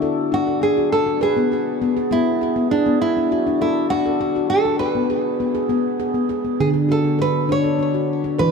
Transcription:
Already playing: E4
0.02 A4
0.32 D4 F#4
0.47 A4
0.62 D4 G#4
0.77 F#4
0.92 A4
1.07 D4
1.21 G#4 B4
1.37 B3
1.52 G#4
1.82 B3
1.97 G#4
2.11 B3 E4
2.41 G#4
2.56 B3
2.71 D4 G#4
2.86 B3
3.02 E4
3.17 D4
3.32 F#4
3.47 D4
3.61 E4 A4
3.90 D4 F#4
4.06 A4
4.21 D4
4.36 F#4
4.50 A4
4.65 D4
4.79 B4
4.95 B3
5.10 G#4
5.40 B3
5.55 G#4
5.69 B3
6.00 G#4
6.14 B3
6.29 G#4
6.44 B3
6.60 D3 G#4
6.74 D4
6.89 F#4 A4
7.04 D4
7.19 A4 B4
7.49 D4 C#5
7.64 A4
7.79 D4
7.94 F#4
8.24 D4
8.38 E3 B4

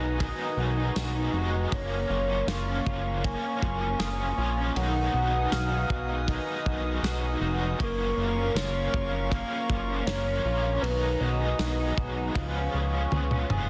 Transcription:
Already playing: B1 B2 D#3 F#3 G#3 D#4 F#4 B4 D#5 G#5 A#5 D#6 F#6 A#6
0.00 D#4
0.19 B2 D#3 F#3 G#3, kick, ride
0.25 D#4
0.39 D#4
0.57 B1 F#4
0.77 D#4
0.94 B1 F#4 C#6, snare, ride, tambourine
1.15 D#4
1.33 F1 G#3 D#4 F#4
1.39 F#3
1.53 D#4
1.70 F#1 F#2 C#3 A#3 A#4 C#5 F5 C#6, kick, ride
1.75 F3 A#3 C#4
1.91 C#4
2.10 F#1 F4
2.30 C#4
2.47 F#1 F4 F5, snare, ride, tambourine
2.67 C#4
2.86 F#1 F4, kick
3.06 C#4
3.24 C#3 F3 A#3 G#5, kick, ride
3.29 C#4
3.43 C#4
3.62 F#1 F4, kick
3.82 C#4
3.99 F#1 F4 D#6, snare, ride, tambourine
4.19 C#4
4.37 A#1 A#3 C#4 F4
4.43 F3
4.57 C#4
4.74 B1 B2 D#3 F#3 B4 F#5 G#5 D#6, ride
4.80 G#3 D#4
4.95 D#4
5.14 B1 F#4
5.33 D#4
5.52 B1 F#4 F5 F6, snare, ride, tambourine
5.71 D#4
5.90 B1 F#4, kick
6.09 D#4
6.27 B2 D#3 F#3 D#5, kick, ride
6.31 G#3 D#4
6.47 D#4
6.66 B1 F#4, kick
6.84 D#4
7.03 B1 F#4, snare, ride, tambourine
7.23 D#4
7.41 F1 G#3 D#4 F#4
7.46 F#3
7.60 D#4
7.78 F#1 F#2 C#3 A#3 A#4 F5 A#5 C#6, kick, ride
7.82 F3 A#3 A#4
7.86 C#4
7.98 C#4
8.17 F#1 F4
8.36 C#4
8.54 F#1 F4 C#5, snare, ride, tambourine
8.73 C#4
8.92 F#1 F4, kick
9.12 C#4
9.30 C#3 F3 A#3 F5, kick, ride
9.34 A#3 C#4
9.50 C#4
9.69 F#1 F4, kick
9.89 C#4
10.06 F#1 F4 C#5, snare, ride, tambourine
10.27 C#4
10.45 A#1 A#3 C#4 F4
10.51 F3
10.64 C#4
10.81 B1 B2 D#3 F#3 B4 G#5 D#6, ride
10.88 G#3 D#4
11.03 D#4
11.20 B1 F#4 D#5
11.41 D#4
11.59 B1 F#4, snare, ride, tambourine
11.80 D#4
11.97 B1 F#4, kick
12.17 D#4
12.34 C#2 C#3 F3 G#3 F5 C#6, kick, ride
12.38 B3 F4
12.56 C#4
12.74 C#2 G#4
12.94 C#4
13.11 C#2 G#4 G#5, high tom
13.31 C#4, mid tom
13.48 F1 B3 F4 G#4, mid tom
13.54 G#3

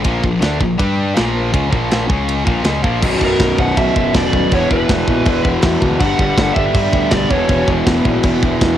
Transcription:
0.04 A#1 A#2 F3 A#3, kick, ride bell
0.23 A#1 A#2 F3, kick
0.40 D2 D3 A3 D4, snare, ride bell
0.60 A#1 A#2 F3, kick
0.78 G2 G3 D4 G4, kick, ride bell
1.15 A#1 A#2 F3 A#3, snare, ride bell
1.52 C#2 C#3 G#3 C#4, kick, ride bell
1.70 A#1 A#2 F3 A#3, kick
1.92 snare, ride bell
2.07 C#2 C#3 G#3 C#4, kick
2.29 ride bell
2.45 A#1 A#2 F3 A#3, kick
2.64 C#2 C#3 G#3 C#4, snare, ride bell
2.83 A#1 A#2 F3 A#3, kick
3.00 B0 B1 F#2 B2, kick, crash
3.04 B2
3.21 B0 B1 F#2 B2 A#4, kick
3.39 B0 B1 F#2 B2, kick, snare
3.58 B0 B1 F#2 B2 F#5, kick
3.77 B1 F#2 B2 E5, kick, crash
3.96 F#1 B1 F#2 B2, kick
4.14 E1 B1 F#2 B2 D5, kick, snare, crash
4.33 D#1 B1 F#2 B2, kick
4.51 E1 E2 B2 E3 C#5, kick, crash
4.70 E1 E2 B2 E3 B4, kick
4.89 E1 E2 B2 E3, kick, snare, crash
5.08 A#1 E2 B2 E3, kick
5.25 E1 E2 B2 E3, kick, crash
5.45 E1 E2 B2 E3, kick
5.62 E2 B2 E3, kick, snare, crash
5.82 D2 E2 B2 E3, kick
5.99 G1 G2 D3 G3 F#5, kick, crash
6.19 G1 G2 D3 G3, kick
6.37 G1 G2 D3 G3, kick, snare, crash
6.53 G1 G2 D3 E5, kick
6.58 G3
6.74 G2 D3 G3, kick, crash
6.93 D2 G2 D3 G3, kick
7.10 B1 G2 D3 G3 D5, kick, snare, crash
7.29 E1 E2 B2 E3 C#5, kick
7.49 E1 E2 B2 E3, kick, crash
7.68 E1 E2 B2 E3, kick
7.86 E1 E2 B2 E3, kick, snare, crash
8.05 A#1 E2 B2 E3, kick
8.23 E1 E2 B2 E3, kick, crash
8.43 E1 E2 B2 E3, kick
8.61 E2 B2 E3, kick, snare, crash

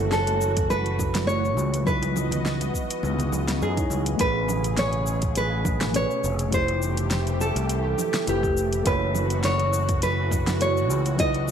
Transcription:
Already playing: F#1 E3 A3 E4 F#4 A4 C#5
0.12 A4, snare, cabasa
0.27 closed hi-hat, high conga
0.41 cabasa
0.57 kick, closed hi-hat, cabasa
0.70 B4, high conga, cabasa
0.86 closed hi-hat
0.99 kick, low conga, cabasa
1.15 snare, closed hi-hat, high conga, low conga, cabasa
1.27 A3 E4 F#4 C#5, cabasa
1.45 cabasa
1.57 C#2, high conga, cabasa
1.74 closed hi-hat, cabasa
1.84 F#3 B3 D#4 E4 F#4 B4 D#5, kick, cabasa
1.90 B4
2.02 closed hi-hat, high conga, cabasa
2.16 low conga, cabasa
2.31 closed hi-hat, low conga, cabasa
2.46 snare, cabasa
2.61 closed hi-hat, high conga, cabasa
2.74 kick, cabasa
2.91 closed hi-hat, cabasa
3.03 C#2, high conga, cabasa
3.19 closed hi-hat, low conga, cabasa
3.32 low conga, cabasa
3.48 snare, closed hi-hat, high conga, cabasa
3.62 F#2 G#4, cabasa
3.76 F#3 D#4 E4 C#5, kick, closed hi-hat, cabasa
3.90 C#2, high conga, cabasa
4.06 closed hi-hat, cabasa
4.16 A1 B2 C#3 A3 C#4 G#4, kick, closed hi-hat, cabasa
4.20 G#4 B4
4.48 low conga, cabasa
4.64 closed hi-hat, cabasa
4.77 C#5, snare, closed hi-hat, cabasa
4.93 closed hi-hat
5.07 cabasa
5.22 kick, closed hi-hat, cabasa
5.35 B4, closed hi-hat, cabasa
5.65 kick, low conga, cabasa
5.81 snare, closed hi-hat, low conga, cabasa
5.92 A3 C#4 G#4 B4 C#5, closed hi-hat, cabasa
6.11 cabasa
6.24 F1, cabasa
6.39 closed hi-hat, cabasa
6.49 E3 A3 E4 G4, kick, closed hi-hat, cabasa
6.53 G4 C5
6.68 closed hi-hat
6.82 cabasa
6.97 closed hi-hat, cabasa
7.11 snare, closed hi-hat, cabasa
7.27 closed hi-hat, cabasa
7.41 A4, cabasa
7.56 C2, closed hi-hat, cabasa
7.69 closed hi-hat, cabasa
7.98 low conga, cabasa
8.14 snare, closed hi-hat, cabasa
8.26 F1 A3 E4 G4 B4, closed hi-hat, cabasa
8.43 kick, cabasa
8.57 cabasa
8.73 closed hi-hat, cabasa
8.83 F#1 A3 E4 F#4 B4, kick, closed hi-hat, cabasa
8.87 F#4 C#5
9.15 low conga, cabasa
9.30 closed hi-hat, cabasa
9.44 C#5, snare, closed hi-hat, cabasa
9.59 closed hi-hat
9.73 cabasa
9.89 kick, closed hi-hat, cabasa
10.02 B4, closed hi-hat, cabasa
10.31 kick, low conga, cabasa
10.47 snare, closed hi-hat, low conga, cabasa
10.59 A3 E4 F#4 C#5, closed hi-hat, cabasa
10.77 cabasa
10.89 C#2, cabasa
11.06 closed hi-hat, cabasa
11.16 B2 F#3 D#4 D#5, kick, closed hi-hat, cabasa
11.20 E4 B4
11.34 closed hi-hat
11.48 cabasa

